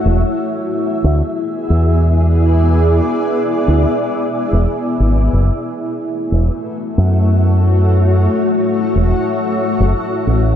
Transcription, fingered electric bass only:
X:1
M:4/4
L:1/16
Q:"Swing 16ths" 1/4=91
K:Emix
V:1 name="Fingered electric bass" clef=bass
E,,, z4 z D,, z3 E,,6- | E,,2 z4 D,, z4 E,,, z2 G,,,2 | F,,, z4 z E,,, z3 F,,6- | F,,2 z4 E,,, z4 F,,, z2 A,,,2 |]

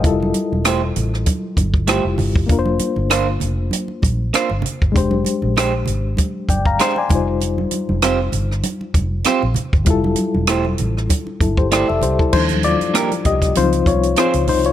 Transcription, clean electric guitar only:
X:1
M:4/4
L:1/8
Q:"Swing 16ths" 1/4=98
K:F
V:1 name="Clean electric guitar"
z2 [A,EGc] z3 [A,EGc] z | z2 [B,DFc] z3 [B,DFc] z | z2 [_A,DGc] z3 [A,DGc] z | z2 [CFGc] z3 [CFGc] z |
z2 [A,EGc] z3 [A,EGc] z | z2 [B,DGB] z3 [CF_Ac] z |]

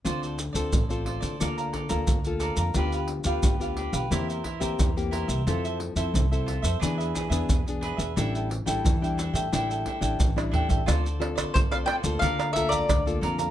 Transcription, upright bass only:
X:1
M:4/4
L:1/16
Q:1/4=89
K:Dm
V:1 name="Upright bass" clef=bass
D,,3 D,, A,,,3 D, D,,2 z D,, D,,3 F,, | D,,3 D,, D,,3 =B,,, E,,2 z E,, E,,3 C,, | F,,3 F,, C,,3 F,, E,,2 z E,, E,,3 E,, | A,,,3 A,,, E,,3 A,, A,,,2 z A,,, A,,,3 A,,, |
D,,4 D,,2 z D,, D,,4 D,,2 F,,2 |]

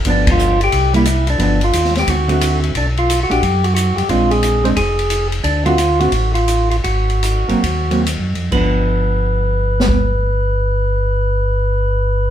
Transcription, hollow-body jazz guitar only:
X:1
M:4/4
L:1/8
Q:"Swing" 1/4=178
K:Gmix
V:1 name="Hollow-body jazz guitar"
[F,B,D]3 z2 [G,_B,E] z2 | [F,B,D] z4 [D,A,C^F]3 | z3 [A,D^F] z4 | [_A,CD]3 [A,CD] z4 |
z [D,A,C^F] z [D,A,CF] z4 | z3 [_G,_B,C] z [G,B,C] z2 | [F,B,D]8- | [F,B,D]8 |]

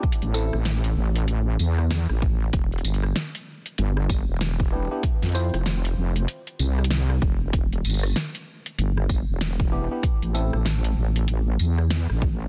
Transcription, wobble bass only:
X:1
M:4/4
L:1/16
Q:"Swing 16ths" 1/4=96
K:Ephr
V:1 name="Wobble bass" clef=bass
z A,,,2 A,,,3 A,,,4 E,,3 A,,,3 | E,,,2 G,,,2 z4 G,,,3 E,,,4 z | z F,,2 F,,,3 F,,,2 z2 C,,4 F,,,2 | E,,,2 G,,,2 z4 G,,,3 E,,,4 z |
z A,,,2 A,,,3 A,,,4 E,,3 A,,,3 |]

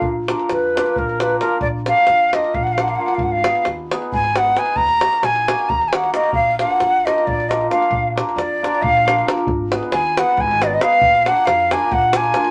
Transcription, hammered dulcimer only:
X:1
M:7/8
L:1/8
Q:1/4=134
K:none
V:1 name="Hammered dulcimer"
z [_B,DF_B] z [B,DFB] z [B,DFB] [B,DFB] | z [_B,DF_B] z [B,DFB] z [B,DFB] [B,DFB] | z [_C_E_A_c] z [CEAc] z [CEAc] [CEAc] | z [_B,_E_G_B] z [B,EGB] z [B,EGB] [B,EGB] |
z [_B,DF_B] z [B,DFB] z [B,DFB] [B,DFB] | z [_B,DF_B] z [B,DFB] z [B,DFB] [B,DFB] | z [_C_E_A_c] z [CEAc] z [CEAc] [CEAc] | z [_B,DF_B] z [B,DFB] z [B,DFB] [B,DFB] |]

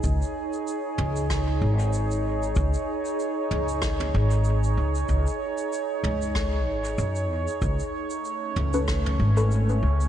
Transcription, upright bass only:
X:1
M:4/4
L:1/8
Q:"Swing 16ths" 1/4=95
K:Alyd
V:1 name="Upright bass" clef=bass
C,, z2 C,,2 G,,,3 | C,, z2 C,,2 G,,,2 C,, | C,, z2 C,,2 G,,, F,, E,, | C,, z2 C,,2 G,,,2 C,, |]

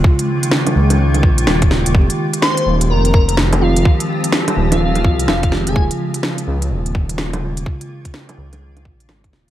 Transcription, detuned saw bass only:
X:1
M:4/4
L:1/16
Q:"Swing 16ths" 1/4=126
K:Ebmix
V:1 name="Detuned saw bass" clef=bass
z6 D,,4 B,,,2 E,,,3 E,,, | F,,, z4 z E,,,2 F,,,8 | z6 E,,,4 C,,2 F,,,3 F,,, | E,,, z4 z D,,2 E,,,8 |
z6 D,,4 B,,,2 A,,,2 E,,, z |]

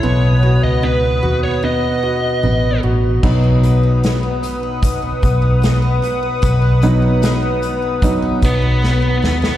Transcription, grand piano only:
X:1
M:4/4
L:1/8
Q:1/4=75
K:Bmix
V:1 name="Grand piano"
B, F B, F B, F B, F | [F,B,D] z6 z | z [F,B,D]3 [F,B,D] z3 |]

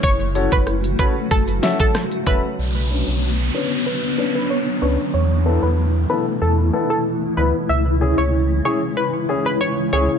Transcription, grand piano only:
X:1
M:4/4
L:1/8
Q:1/4=94
K:Bdor
V:1 name="Grand piano"
z [CFAc] z [CFAc] z [CFAe] z [CFAe] | z [CDB] z [CDB] z [CDB] z [CDB] | z [B,EA] z [B,EA] z [B,EA] z [B,EB] | z [CEG] z [CEG] z [CEG] z [CEG] |]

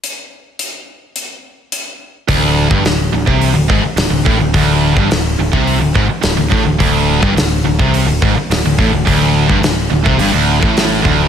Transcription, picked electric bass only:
X:1
M:4/4
L:1/16
Q:1/4=106
K:Cmix
V:1 name="Picked electric bass" clef=bass
z16 | D,,,3 G,,, D,,,2 D,,, C,,2 D,,, ^G,,, z D,,, D,,, A,,, D,,, | D,,,3 G,,, D,,,2 D,,, C,,2 D,,, ^G,,, z D,,, D,,, A,,, D,,, | D,,,3 G,,, D,,,2 D,,, C,,2 D,,, ^G,,, z D,,, D,,, A,,, D,,, |
D,,,3 G,,, D,,,2 D,,, C,, G,,, D,,,2 A,,,3 D,,,2 |]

